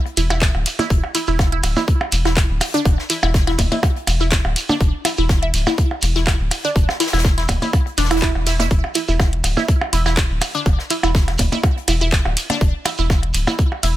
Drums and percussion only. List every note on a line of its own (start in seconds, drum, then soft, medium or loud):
0.06 closed hi-hat soft
0.17 closed hi-hat loud
0.17 closed hi-hat medium
0.17 ride medium
0.17 shekere loud
0.30 closed hi-hat soft
0.30 percussion blips medium
0.30 shekere medium
0.41 kick loud
0.41 snare loud
0.41 clap loud
0.41 closed hi-hat medium
0.41 shekere soft
0.55 percussion blips soft
0.66 closed hi-hat medium
0.66 closed hi-hat loud
0.66 ride medium
0.66 shekere loud
0.79 snare soft
0.79 percussion blips medium
0.79 shekere medium
0.90 kick loud
0.90 closed hi-hat medium
0.90 shekere soft
1.04 percussion blips soft
1.15 closed hi-hat loud
1.15 closed hi-hat medium
1.15 ride medium
1.15 shekere loud
1.27 shekere medium
1.39 kick loud
1.39 snare loud
1.39 closed hi-hat medium
1.39 percussion blips medium
1.39 shekere soft
1.52 closed hi-hat soft
1.63 closed hi-hat medium
1.63 ride medium
1.63 percussion blips soft
1.63 shekere medium
1.76 snare medium
1.76 percussion blips medium
1.76 shekere soft
1.87 kick loud
1.87 closed hi-hat medium
1.87 shekere soft
2.01 percussion blips medium
2.12 closed hi-hat medium
2.12 ride medium
2.12 shekere medium
2.25 snare medium
2.25 percussion blips soft
2.25 shekere soft
2.36 kick loud
2.36 snare loud
2.36 clap loud
2.36 closed hi-hat loud
2.36 shekere soft
2.61 closed hi-hat medium
2.61 open hi-hat medium
2.61 ride medium
2.61 percussion blips medium
2.61 shekere loud
2.74 closed hi-hat soft
2.74 shekere soft
2.85 kick loud
2.85 closed hi-hat medium
2.85 percussion blips soft
2.85 shekere soft
2.99 snare medium
3.09 closed hi-hat medium
3.09 ride medium
3.09 shekere medium
3.23 percussion blips medium
3.23 shekere soft
3.34 kick loud
3.34 snare loud
3.34 closed hi-hat medium
3.34 shekere soft
3.47 snare medium
3.47 closed hi-hat soft
3.47 percussion blips soft
3.58 kick medium
3.58 closed hi-hat medium
3.58 ride medium
3.58 percussion blips medium
3.58 shekere medium
3.72 ride soft
3.72 percussion blips medium
3.72 shekere medium
3.83 kick loud
3.83 closed hi-hat medium
3.83 percussion blips medium
3.83 shekere soft
3.96 closed hi-hat soft
4.07 closed hi-hat medium
4.07 ride medium
4.07 percussion blips soft
4.07 shekere medium
4.21 shekere medium
4.31 kick loud
4.31 snare loud
4.31 clap loud
4.31 closed hi-hat loud
4.31 shekere soft
4.45 percussion blips medium
4.56 closed hi-hat medium
4.56 ride medium
4.56 shekere medium
4.69 snare soft
4.69 percussion blips medium
4.69 percussion blips soft
4.69 shekere soft
4.80 kick loud
4.80 closed hi-hat medium
4.80 shekere soft
5.05 closed hi-hat medium
5.05 ride medium
5.05 percussion blips medium
5.05 shekere medium
5.18 shekere medium
5.29 kick loud
5.29 snare loud
5.29 closed hi-hat medium
5.29 percussion blips soft
5.29 shekere soft
5.43 closed hi-hat soft
5.54 closed hi-hat medium
5.54 ride medium
5.54 shekere medium
5.67 snare medium
5.67 percussion blips medium
5.67 shekere medium
5.77 kick loud
5.77 closed hi-hat loud
5.77 shekere soft
5.91 percussion blips soft
6.02 closed hi-hat medium
6.02 ride medium
6.02 shekere medium
6.15 snare medium
6.15 shekere medium
6.27 kick loud
6.27 snare loud
6.27 clap loud
6.27 closed hi-hat medium
6.27 percussion blips medium
6.27 shekere soft
6.51 closed hi-hat medium
6.51 open hi-hat medium
6.51 ride medium
6.51 percussion blips soft
6.51 shekere medium
6.64 closed hi-hat soft
6.64 shekere soft
6.76 kick loud
6.76 closed hi-hat medium
6.76 shekere soft
6.89 snare medium
6.89 percussion blips medium
7.00 snare loud
7.00 closed hi-hat loud
7.00 closed hi-hat medium
7.00 ride medium
7.00 shekere medium
7.07 snare medium
7.07 closed hi-hat medium
7.13 snare medium
7.13 closed hi-hat medium
7.13 percussion blips soft
7.13 shekere medium
7.18 snare medium
7.18 closed hi-hat medium
7.24 kick loud
7.24 snare loud
7.24 closed hi-hat loud
7.24 shekere soft
7.38 snare medium
7.38 closed hi-hat soft
7.49 kick medium
7.49 closed hi-hat medium
7.49 ride medium
7.49 percussion blips medium
7.49 shekere medium
7.62 ride medium
7.62 percussion blips medium
7.62 shekere medium
7.73 kick loud
7.73 closed hi-hat medium
7.73 percussion blips soft
7.73 shekere soft
7.87 closed hi-hat soft
7.98 snare medium
7.98 closed hi-hat medium
7.98 ride medium
7.98 shekere medium
8.04 snare medium
8.04 closed hi-hat medium
8.10 snare medium
8.10 closed hi-hat medium
8.10 closed hi-hat soft
8.10 percussion blips medium
8.10 shekere soft
8.16 snare medium
8.16 closed hi-hat medium
8.21 kick loud
8.21 snare loud
8.21 clap loud
8.21 shekere soft
8.35 percussion blips soft
8.47 snare loud
8.47 closed hi-hat medium
8.47 ride medium
8.47 shekere medium
8.60 snare loud
8.60 closed hi-hat medium
8.60 percussion blips loud
8.60 shekere medium
8.70 kick loud
8.70 closed hi-hat medium
8.70 shekere soft
8.84 percussion blips soft
8.95 closed hi-hat loud
8.95 closed hi-hat medium
8.95 ride medium
8.95 shekere loud
9.08 shekere medium
9.20 kick loud
9.20 snare loud
9.20 closed hi-hat medium
9.20 percussion blips medium
9.20 shekere soft
9.33 closed hi-hat soft
9.44 closed hi-hat medium
9.44 ride medium
9.44 percussion blips soft
9.44 shekere medium
9.57 snare medium
9.57 percussion blips medium
9.57 shekere soft
9.68 kick loud
9.68 closed hi-hat medium
9.68 shekere soft
9.81 percussion blips medium
9.93 closed hi-hat medium
9.93 ride medium
9.93 shekere medium
10.06 snare medium
10.06 percussion blips soft
10.06 shekere medium
10.17 kick loud
10.17 snare loud
10.17 clap loud
10.17 closed hi-hat loud
10.17 shekere soft
10.41 closed hi-hat medium
10.41 open hi-hat medium
10.41 ride medium
10.41 percussion blips medium
10.41 shekere loud
10.55 closed hi-hat soft
10.55 shekere medium
10.66 kick loud
10.66 closed hi-hat loud
10.66 percussion blips soft
10.66 shekere soft
10.79 snare medium
10.90 closed hi-hat medium
10.90 closed hi-hat loud
10.90 ride medium
10.90 shekere loud
11.03 percussion blips medium
11.03 shekere medium
11.15 kick loud
11.15 snare loud
11.15 closed hi-hat medium
11.15 shekere soft
11.28 snare medium
11.28 closed hi-hat soft
11.28 percussion blips soft
11.38 kick medium
11.38 closed hi-hat loud
11.38 closed hi-hat medium
11.38 ride medium
11.38 percussion blips medium
11.38 shekere loud
11.52 ride medium
11.52 percussion blips medium
11.52 shekere medium
11.63 kick loud
11.63 closed hi-hat medium
11.63 percussion blips medium
11.63 shekere soft
11.77 closed hi-hat soft
11.88 closed hi-hat medium
11.88 ride medium
11.88 percussion blips soft
11.88 shekere loud
12.01 shekere medium
12.12 kick loud
12.12 snare loud
12.12 clap loud
12.12 closed hi-hat medium
12.12 shekere soft
12.25 percussion blips medium
12.37 closed hi-hat medium
12.37 ride medium
12.37 shekere loud
12.50 snare soft
12.50 percussion blips loud
12.50 percussion blips soft
12.50 shekere soft
12.61 kick loud
12.61 closed hi-hat medium
12.61 shekere soft
12.85 closed hi-hat loud
12.85 closed hi-hat medium
12.85 ride medium
12.85 percussion blips medium
12.85 shekere medium
12.98 shekere medium
13.10 kick loud
13.10 snare loud
13.10 closed hi-hat medium
13.10 percussion blips soft
13.10 shekere soft
13.23 closed hi-hat soft
13.34 closed hi-hat loud
13.34 closed hi-hat medium
13.34 ride medium
13.34 shekere loud
13.47 snare soft
13.47 percussion blips medium
13.47 shekere medium
13.59 kick loud
13.59 closed hi-hat medium
13.59 shekere soft
13.72 percussion blips soft
13.83 closed hi-hat medium
13.83 ride medium
13.83 shekere medium